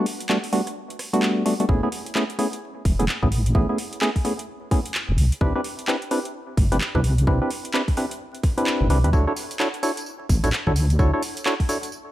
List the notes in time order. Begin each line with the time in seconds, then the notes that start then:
0.06 open hi-hat
0.20 closed hi-hat
0.29 G3 A3 B3 D4 F#4, clap
0.44 open hi-hat
0.53 G3 A3 B3 D4 F#4, open hi-hat
0.67 cross-stick, closed hi-hat
0.90 closed hi-hat
0.99 cross-stick, open hi-hat
1.13 G3 A3 B3 D4 F#4, closed hi-hat
1.23 clap
1.46 G3 A3 B3 D4 F#4, open hi-hat
1.60 G3 A3 B3 D4 F#4, closed hi-hat
1.69 A1 A3 B3 C#4 E4 G#4, kick
1.83 A3 B3 C#4 E4 G#4
1.92 open hi-hat
2.06 closed hi-hat
2.15 A3 B3 C#4 E4 G#4, clap
2.30 closed hi-hat
2.39 A3 B3 C#4 E4 G#4, open hi-hat
2.53 closed hi-hat
2.85 E1, kick, open hi-hat
2.99 E1 A3 B3 C#4 E4 G#4, closed hi-hat
3.09 clap
3.23 A1 A3 B3 C#4 E4 G#4, kick
3.32 open hi-hat
3.46 closed hi-hat
3.55 A1 A3 B3 C#4 E4 G#4, kick
3.69 A3 B3 C#4 E4 G#4
3.78 open hi-hat
3.93 closed hi-hat
4.01 A3 B3 C#4 E4 G#4, clap
4.16 kick, open hi-hat
4.25 A3 B3 C#4 E4 G#4, open hi-hat
4.39 closed hi-hat
4.71 A3 B3 C#4 E4 G#4, kick, open hi-hat
4.86 closed hi-hat
4.95 clap
5.09 E1
5.18 C2, open hi-hat
5.32 closed hi-hat
5.41 C2 C4 D4 E4 G4 B4, kick
5.55 C4 D4 E4 G4 B4
5.64 open hi-hat
5.79 closed hi-hat
5.88 C4 D4 E4 G4 B4, clap
6.02 closed hi-hat
6.11 C4 D4 E4 G4 B4, open hi-hat
6.25 closed hi-hat
6.57 G1, kick, open hi-hat
6.72 G1 C4 D4 E4 G4 B4, closed hi-hat
6.81 clap
6.95 C2 C4 D4 E4 G4 B4, kick
7.04 open hi-hat
7.18 closed hi-hat
7.27 C2 C4 D4 E4 G4 B4, kick
7.41 C4 D4 E4 G4 B4
7.51 open hi-hat
7.65 closed hi-hat
7.74 C4 D4 E4 G4 B4, clap
7.88 kick, open hi-hat
7.97 C4 D4 E4 G4 B4, open hi-hat
8.11 closed hi-hat
8.35 closed hi-hat
8.43 kick, cross-stick, open hi-hat
8.58 C4 D4 E4 G4 B4, closed hi-hat
8.67 clap
8.81 G1
8.90 C2 C4 D4 E4 G4 B4, open hi-hat
9.04 E2 C4 D4 E4 G4 B4, closed hi-hat
9.13 D2 D4 E4 F#4 A4 C#5, kick, tambourine
9.27 D4 E4 F#4 A4 C#5
9.36 open hi-hat, tambourine
9.51 closed hi-hat, tambourine
9.60 D4 E4 F#4 A4 C#5, clap, tambourine
9.74 closed hi-hat
9.83 D4 E4 F#4 A4 C#5, open hi-hat, tambourine
9.97 closed hi-hat, tambourine
10.06 tambourine
10.29 A1, kick, open hi-hat, tambourine
10.44 A1 D4 E4 F#4 A4 C#5, closed hi-hat, tambourine
10.53 clap, tambourine
10.67 D2 D4 E4 F#4 A4 C#5, kick
10.76 open hi-hat, tambourine
10.90 closed hi-hat, tambourine
10.99 D2 D4 E4 F#4 A4 C#5, kick, tambourine
11.13 D4 E4 F#4 A4 C#5
11.23 open hi-hat, tambourine
11.37 closed hi-hat, tambourine
11.46 D4 E4 F#4 A4 C#5, clap, tambourine
11.60 kick, open hi-hat
11.69 D4 E4 F#4 A4 C#5, open hi-hat, tambourine
11.83 closed hi-hat, tambourine
11.92 tambourine